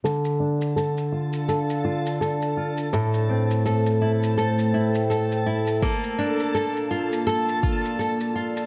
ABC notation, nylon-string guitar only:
X:1
M:4/4
L:1/8
Q:"Swing 16ths" 1/4=83
K:Dm
V:1 name="Nylon-string guitar"
[D,A] D A F A F A F | [A,,A] C A E A E A E | [B,A] D A F A F A F |]